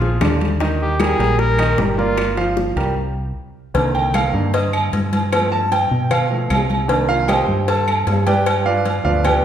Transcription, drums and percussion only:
0.02 high bongo, high conga, low conga
0.21 high bongo, low bongo, high conga, high timbale, low timbale, claves
0.41 high bongo, high conga, high timbale
0.60 high bongo, high conga, high timbale
0.81 high conga
1.00 high bongo, high conga, high timbale, claves
1.19 high conga, high timbale
1.39 high bongo, high conga
1.59 high conga, high timbale, claves
1.78 high bongo, low bongo, high conga
1.99 high conga
2.18 high bongo, high timbale, claves
2.37 high bongo, high conga, high timbale
2.57 high bongo, high conga
2.76 high conga, high timbale
3.74 cowbell, high conga, low agogo
3.94 high conga, low agogo
4.14 cowbell, high conga, low agogo, claves
4.34 high conga
4.53 cowbell, high conga, low agogo
4.73 high conga, low agogo, claves
4.93 cowbell, high conga
5.13 cowbell, high conga, low agogo
5.32 cowbell, low agogo, claves
5.52 high conga
5.72 cowbell, high conga, low agogo
5.91 high conga
6.11 cowbell, high conga, low conga, low agogo, claves
6.30 high conga
6.50 cowbell, high conga, low timbale, low agogo, claves
6.70 high conga, low agogo
6.89 cowbell, high conga, low agogo
7.09 high conga, low agogo
7.28 cowbell, high conga, low agogo, claves
7.48 high conga
7.68 cowbell, high conga, low agogo
7.88 high conga, low agogo, claves
8.07 cowbell, high conga, low timbale
8.27 cowbell, high conga, low agogo
8.46 cowbell, high conga, low agogo, claves
8.66 high conga
8.86 cowbell, high conga, low agogo
9.05 high conga
9.25 cowbell, high conga, low conga, low agogo, claves

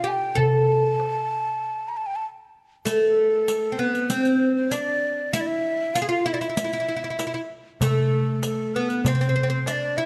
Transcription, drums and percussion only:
0.22 darbuka ka
0.37 darbuka dum
0.84 darbuka ka
1.00 darbuka tek
1.46 darbuka ka
2.86 riq
3.48 riq
3.95 riq
4.10 riq
4.25 riq
4.72 riq
5.34 riq
5.96 riq
6.42 riq
6.57 riq
6.73 riq
7.19 riq
7.81 riq, darbuka dum
8.43 riq, darbuka tek
8.89 riq, darbuka ka
9.05 riq, darbuka dum
9.21 riq
9.66 riq, darbuka tek

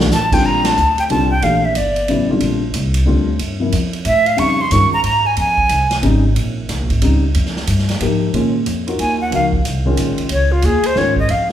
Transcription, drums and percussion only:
0.00 snare
0.11 snare, hi-hat pedal
0.32 kick, crash
0.65 snare, ride
0.77 hi-hat pedal
0.98 ride
1.10 ride
1.42 ride
1.75 hi-hat pedal, ride
1.96 ride
2.08 ride
2.40 ride
2.74 hi-hat pedal, ride
2.94 ride
3.39 ride
3.72 hi-hat pedal, ride
3.93 ride
4.05 hi-hat pedal, ride
4.26 ride
4.38 ride
4.71 hi-hat pedal, ride
5.04 ride
5.37 ride
5.58 kick
5.69 hi-hat pedal, ride
5.91 snare, ride
6.03 ride
6.36 ride
6.69 snare, hi-hat pedal, ride
6.90 kick, ride
7.02 ride
7.35 ride
7.46 snare
7.56 snare
7.67 hi-hat pedal, ride
7.79 snare
7.89 snare, ride
8.01 ride
8.34 ride
8.66 hi-hat pedal, ride
8.88 ride
8.99 ride
9.32 ride
9.53 kick
9.65 hi-hat pedal, ride
9.97 hi-hat pedal, ride
10.18 ride
10.29 ride
10.62 hi-hat pedal, ride
10.83 ride
10.96 snare
11.16 kick
11.29 ride

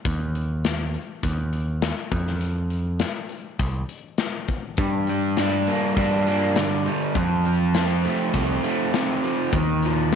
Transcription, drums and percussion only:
0.05 kick, closed hi-hat
0.35 closed hi-hat
0.65 snare, closed hi-hat, tambourine
0.94 closed hi-hat
1.23 kick, closed hi-hat
1.53 closed hi-hat
1.82 snare, closed hi-hat, tambourine
2.12 kick, closed hi-hat
2.27 snare
2.41 closed hi-hat
2.70 closed hi-hat
3.00 snare, closed hi-hat, tambourine
3.29 closed hi-hat
3.59 kick, closed hi-hat
3.89 closed hi-hat
4.18 snare, closed hi-hat, tambourine
4.48 kick, closed hi-hat
4.77 kick, closed hi-hat
5.07 closed hi-hat
5.37 snare, closed hi-hat, tambourine
5.67 closed hi-hat
5.97 kick, closed hi-hat
6.27 closed hi-hat
6.56 snare, closed hi-hat, tambourine
6.86 closed hi-hat
7.15 kick, closed hi-hat
7.45 closed hi-hat
7.74 snare, closed hi-hat, tambourine
8.04 closed hi-hat
8.33 kick, closed hi-hat
8.64 closed hi-hat
8.94 snare, closed hi-hat, tambourine
9.24 closed hi-hat
9.53 kick, closed hi-hat
9.83 closed hi-hat

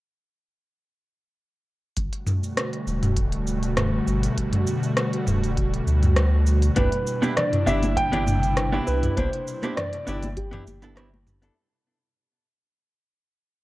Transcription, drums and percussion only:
1.97 kick, closed hi-hat, shaker
2.13 closed hi-hat
2.27 mid tom, shaker
2.43 shaker
2.57 cross-stick, closed hi-hat, shaker
2.73 closed hi-hat
2.87 shaker
3.03 closed hi-hat, mid tom, shaker
3.17 kick, closed hi-hat, shaker
3.32 closed hi-hat
3.47 shaker
3.63 closed hi-hat, shaker
3.77 cross-stick, closed hi-hat, mid tom, shaker
4.07 shaker
4.23 closed hi-hat, shaker
4.38 kick, closed hi-hat, shaker
4.53 closed hi-hat, mid tom
4.67 shaker
4.83 shaker
4.97 cross-stick, closed hi-hat, shaker
5.13 closed hi-hat
5.27 mid tom, shaker
5.43 closed hi-hat, shaker
5.57 kick, closed hi-hat, shaker
5.74 closed hi-hat
5.87 shaker
6.03 closed hi-hat, mid tom, shaker
6.16 cross-stick, closed hi-hat, shaker
6.46 shaker
6.62 closed hi-hat, shaker
6.76 kick, closed hi-hat, mid tom, high conga, shaker
6.92 closed hi-hat
7.07 shaker
7.22 high conga, shaker
7.37 cross-stick, closed hi-hat, low conga, shaker
7.53 closed hi-hat, mid tom
7.67 shaker
7.83 closed hi-hat, high conga, shaker
7.97 kick, closed hi-hat, shaker
8.13 closed hi-hat, low conga
8.26 mid tom, high conga, shaker
8.43 closed hi-hat, shaker
8.57 cross-stick, closed hi-hat, shaker
8.73 high conga
8.87 shaker
9.03 closed hi-hat, mid tom, shaker
9.17 kick, closed hi-hat, high conga, shaker
9.33 closed hi-hat
9.48 shaker
9.62 cross-stick, closed hi-hat, high conga, shaker
9.77 cross-stick, closed hi-hat, mid tom, low conga, shaker
9.93 closed hi-hat
10.07 shaker
10.22 closed hi-hat, high conga, shaker
10.37 kick, closed hi-hat, shaker
10.53 closed hi-hat, mid tom, low conga
10.67 high conga, shaker
10.82 closed hi-hat, shaker
10.97 cross-stick, closed hi-hat, shaker
11.14 high conga
11.27 mid tom, shaker
11.42 closed hi-hat, shaker

